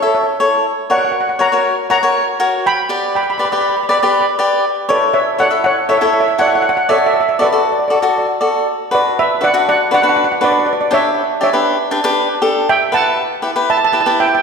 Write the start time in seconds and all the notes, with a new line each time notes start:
0.02 E4 A4 E5
0.07 C#5
0.15 C#5
0.23 C#5
0.40 E4 A4 C#5
0.90 F#4 A#4 C#5 D5 F#5
0.98 F#5
1.05 F#5
1.12 F#5
1.21 F#5
1.29 F#5
1.39 F#4 A#4 C#5 F#5 A#5
1.52 F#4 A#4 C#5
1.90 F#4 A#4 C#5 F#5 A#5
2.03 F#4 A#4 C#5
2.40 F#4 A#4 C#5
2.66 G5 B5
2.89 G4 B4 D5
3.15 G5 B5
3.23 B5
3.30 B5
3.38 G4 B4 D5 B5
3.45 B5
3.52 G4 B4 D5 B5
3.61 B5
3.69 B5
3.77 B5
3.83 B5
3.89 G4 B4 D5 B5
3.99 B4 D5 B5
4.03 G4 B5
4.13 B5
4.21 B5
4.39 G4 B4 D5
4.89 E4 A4 B4 C#5 D5
5.14 C#5 E5
5.38 E4 A4 C#5 D5 F#5
5.51 E4 A4 E5
5.64 C#5 F#5
5.89 E4 A4 C#5 E5
5.98 E4 E5
6.02 A4 C#5 E5
6.14 E5
6.20 E5
6.28 E5
6.38 E4 A4 C#5 D5 F#5
6.48 F#5
6.55 F#5
6.62 F#5
6.69 F#5
6.77 F#5
6.89 F#4 A4 C#5 D5 E5
6.98 E5
7.06 E5
7.14 E5
7.21 E5
7.29 E5
7.39 F#4 A4 D5
7.44 B4
7.49 A4 D5
7.54 F#4 D5
7.64 D5
7.72 D5
7.79 D5
7.88 F#4 A4 D5
7.95 D5
8.02 F#4 A4 D5
8.10 D5
8.18 D5
8.26 D5
8.41 F#4 A4 D5
8.91 D4 F#4 B4 D5
9.19 B4 E5
9.41 D4 F#4 B4 D5 F#5
9.54 D4 F#4 B4
9.69 D5 F#5
9.91 D4 F#4 B4 D5 F#5
10.02 D4 F#4 B4 F#5
10.09 F#5
10.16 F#5
10.24 F#5
10.32 F#5
10.41 D4 F#4 B4 D5
10.52 D5
10.59 D5
10.66 D5
10.73 D5
10.81 D5
10.91 D4 G4 B4 C#5 E5
11.41 D4 G4 C#5 D5 E5
11.53 D4 G4 B4
11.91 D4 G4 B4
12.04 D4 G4 B4
12.42 D4 G4 A4
12.69 E5 G5
12.92 E4 G4 B4 F#5 A5
13.42 E4 G4 B4
13.56 E4 G4 B4
13.70 E5 A5
13.78 A5
13.85 A5
13.93 E4 G4 B4 A5
14.01 A5
14.06 E4 G4 B4 A5
14.20 E5 G5
14.28 G5
14.35 G5